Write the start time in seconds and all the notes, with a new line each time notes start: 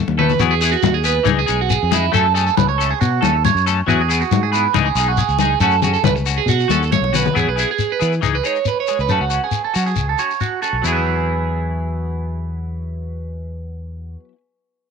0.08 D#2, high conga
0.18 A3 C#4 A4 B4, low conga
0.29 low conga, shekere
0.40 E2 F#3 B3 E4 G#4, muted clean electric guitar stroke, muted conga, shekere
0.51 G#4
0.61 B3 E4 G#4, shekere
0.72 F#4
0.83 D#2, high conga, shekere
0.94 G#4
1.04 B3 G#4 B4, muted conga, shekere
1.23 C#2 E3 G#3 D#4 G#4, shekere
1.28 muted conga, high conga
1.39 G#4
1.46 B1 G#3 D#4 G#4, muted conga, shekere
1.61 F#4
1.70 G#4, shekere
1.83 F2
1.91 G#3 D#4 E4 G#4, high conga, shekere
2.12 F#2 F#3 A3 C#4 A4, muted conga, shekere
2.34 A3 C#4 G#4 A4, shekere
2.47 A4, shekere
2.57 C#2 B4, high conga, low conga, shekere
2.69 C#5
2.78 A3 C#4 A4, muted conga, shekere
2.91 G#4
3.01 B2 F#4, muted conga, shekere
3.21 D#2 A3 C#4 A4, muted conga, high conga, shekere
3.45 C#5, high conga, shekere
3.55 F#2, shekere
3.66 A3 C#4 A4, muted clean electric guitar stroke, shekere
3.87 E2 F#3 B3 E4 F#4 G#4, muted conga, shekere
4.01 G#4
4.08 B3 E4 G#4, shekere
4.21 F#4, shekere
4.31 G#2, high conga, shekere
4.43 G#4
4.52 B3 E4 G#4 B4, muted conga, shekere
4.74 C#2 E3 G#3 D#4 G#4, muted conga, high conga, shekere
4.86 G#4
4.95 B1 D#4 G#4, muted conga, shekere
5.00 G#3
5.08 F#4
5.17 G#4, shekere
5.28 C#2, shekere
5.39 D#4 G#4, high conga, shekere
5.43 G#3
5.60 F#2 A3 C#4 F#4 A4, muted conga, shekere
5.71 shekere
5.82 F#4 G#4, low conga, shekere
5.87 C#4
5.94 A4, shekere
6.03 C#2 B4, high conga, low conga, shekere
6.16 muted clean electric guitar stroke, shekere
6.26 C#4 F#4, muted conga, shekere
6.38 G#4
6.46 B2 F#4, muted conga, shekere
6.60 shekere
6.68 D#2 C#4 F#4 A4, muted conga, high conga, shekere
6.82 shekere
6.92 C#5, high conga, shekere
7.01 B1, high conga
7.13 C#4 F#4 B4, low conga, shekere
7.26 low conga
7.34 E2 F#3 B3 E4 G#4, shekere
7.47 B1 B4
7.56 B3 E4 G#4, shekere
7.71 G#4
7.79 shekere
7.92 B4
7.99 E3 B3 E4 G#4, shekere
8.12 shekere
8.21 C#2 E3 G#3 D#4 G#4, shekere
8.35 B4
8.44 G#3 D#4 G#4 C#5, shekere
8.55 shekere
8.65 B4, shekere
8.80 C#5
8.87 G#3 G#4, shekere
8.99 C#2 B4, shekere
9.09 F#2 A3 C#4 F#4 A4, shekere
9.20 C#2 F#4
9.30 C#4 F#4, shekere
9.44 G#4
9.51 shekere
9.65 A4
9.74 F#3 C#4 F#4, shekere
9.86 G#4, shekere
9.96 C#2, shekere
10.09 A4
10.19 C#4 F#4 C#5, shekere
10.31 shekere
10.41 F#4, shekere
10.62 C#4 F#4 A4, shekere
10.73 B1
10.82 E2 F#3 B3 E4, shekere
10.87 G#4
10.92 B4
10.96 E5